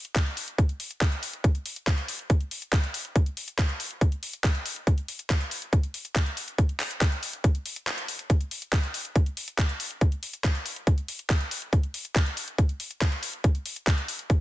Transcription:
0.05 closed hi-hat
0.16 kick, clap, closed hi-hat
0.26 closed hi-hat
0.37 open hi-hat
0.48 closed hi-hat
0.58 kick, closed hi-hat
0.69 closed hi-hat
0.80 open hi-hat
0.91 closed hi-hat
1.01 kick, clap, closed hi-hat
1.12 closed hi-hat
1.23 open hi-hat
1.33 closed hi-hat
1.44 kick, closed hi-hat
1.55 closed hi-hat
1.66 open hi-hat
1.76 closed hi-hat
1.87 kick, clap, closed hi-hat
1.98 closed hi-hat
2.08 open hi-hat
2.19 closed hi-hat
2.30 kick, closed hi-hat
2.41 closed hi-hat
2.51 open hi-hat
2.62 closed hi-hat
2.73 kick, clap, closed hi-hat
2.83 closed hi-hat
2.94 open hi-hat
3.05 closed hi-hat
3.16 kick, closed hi-hat
3.26 closed hi-hat
3.37 open hi-hat
3.48 closed hi-hat
3.58 kick, clap, closed hi-hat
3.69 closed hi-hat
3.80 open hi-hat
3.91 closed hi-hat
4.01 kick, closed hi-hat
4.12 closed hi-hat
4.23 open hi-hat
4.33 closed hi-hat
4.44 kick, clap, closed hi-hat
4.55 closed hi-hat
4.66 open hi-hat
4.76 closed hi-hat
4.87 kick, closed hi-hat
4.98 closed hi-hat
5.08 open hi-hat
5.19 closed hi-hat
5.30 kick, clap, closed hi-hat
5.41 closed hi-hat
5.51 open hi-hat
5.62 closed hi-hat
5.73 kick, closed hi-hat
5.83 closed hi-hat
5.94 open hi-hat
6.05 closed hi-hat
6.16 kick, clap, closed hi-hat
6.26 closed hi-hat
6.37 open hi-hat
6.48 closed hi-hat
6.58 kick, closed hi-hat
6.69 closed hi-hat
6.80 clap, open hi-hat
6.91 closed hi-hat
7.01 kick, clap, closed hi-hat
7.12 closed hi-hat
7.23 open hi-hat
7.33 closed hi-hat
7.44 kick, closed hi-hat
7.55 closed hi-hat
7.66 open hi-hat
7.76 closed hi-hat
7.87 clap, closed hi-hat
7.98 closed hi-hat
8.08 open hi-hat
8.19 closed hi-hat
8.30 kick, closed hi-hat
8.41 closed hi-hat
8.51 open hi-hat
8.62 closed hi-hat
8.73 kick, clap, closed hi-hat
8.83 closed hi-hat
8.94 open hi-hat
9.05 closed hi-hat
9.16 kick, closed hi-hat
9.26 closed hi-hat
9.37 open hi-hat
9.48 closed hi-hat
9.58 kick, clap, closed hi-hat
9.69 closed hi-hat
9.80 open hi-hat
9.91 closed hi-hat
10.01 kick, closed hi-hat
10.12 closed hi-hat
10.23 open hi-hat
10.33 closed hi-hat
10.44 kick, clap, closed hi-hat
10.55 closed hi-hat
10.66 open hi-hat
10.76 closed hi-hat
10.87 kick, closed hi-hat
10.98 closed hi-hat
11.08 open hi-hat
11.19 closed hi-hat
11.30 kick, clap, closed hi-hat
11.41 closed hi-hat
11.51 open hi-hat
11.62 closed hi-hat
11.73 kick, closed hi-hat
11.83 closed hi-hat
11.94 open hi-hat
12.05 closed hi-hat
12.16 kick, clap, closed hi-hat
12.26 closed hi-hat
12.37 open hi-hat
12.48 closed hi-hat
12.58 kick, closed hi-hat
12.69 closed hi-hat
12.80 open hi-hat
12.91 closed hi-hat
13.01 kick, clap, closed hi-hat
13.12 closed hi-hat
13.23 open hi-hat
13.33 closed hi-hat
13.44 kick, closed hi-hat
13.55 closed hi-hat
13.66 open hi-hat
13.76 closed hi-hat
13.87 kick, clap, closed hi-hat
13.98 closed hi-hat
14.08 open hi-hat
14.19 closed hi-hat
14.30 kick, closed hi-hat

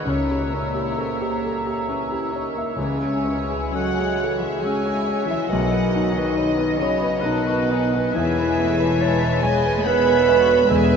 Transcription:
Already playing: G#4 C#5 F#5
0.05 C#2 A#2 C#3 G3 C#4 C#5 A#5
0.10 E5
0.30 A#3 G4
0.52 A#2 A#3 C#4 A#4
0.75 E4 G4
0.98 C#3 C#4 A4 C5
1.21 A#3 G4
1.42 G3 A4 A#4
1.66 A#3 G4
1.88 E3 C#4
2.11 E4 G4
2.32 D#3 C#4 C#5
2.56 A#3 E5
2.75 C#2 C#3 E3 G#3 C#4 G#4 C#5 E5 G#5
3.00 G#3 G#4
3.25 B2 C#4
3.50 E4 G#4
3.72 C#3 F#3 C#4 F#4 A4 D#5 F#5
3.98 G#3 G#4
4.19 E3
4.23 A4
4.40 E3 G#3 E4 G#4 E5
4.60 G#3 G#4 C#5 E5 G#5
4.64 C#4
4.86 E4 G#4
5.06 C#4 C#5
5.25 E3 G#3 E4 E5
5.31 E5
5.48 B1 D#3 F#3 B3 F#4 B4 D#5 F#5
5.53 B1
5.71 B3 B4
5.93 D#4
6.13 D#3 D#4 F#4 D#5
6.17 B4
6.34 B2 D#4 C#5 D#5 B5
6.57 B3 B4
6.78 C#3 F#3 C#4 C#5
6.82 C#5
7.00 B3 B4
7.20 B2 D#3 B3 D#4 B4 D#5 F#5 A5
7.25 D#4
7.45 F#4
7.49 B4
7.70 D#4 D#5 G#5
7.93 B3 B4
8.15 E1 E2 E3 B3 E4 G#4 B4 C#5 E5 G#5
8.40 B4
8.57 E3 A3 B3
8.80 B4
8.99 G#3 B4 C#5 A5
9.21 B4
9.40 G#3 G#4 C#5 D#5 G#5
9.66 B4
9.83 D#3 G#3 B3 G#4 B4 E5 F#5 B5
10.06 B4
10.25 D3 F#4 E5
10.49 B4
10.68 E1 E2 G#3 B3 G#4 B4 E5 G#5 B5
10.92 B4

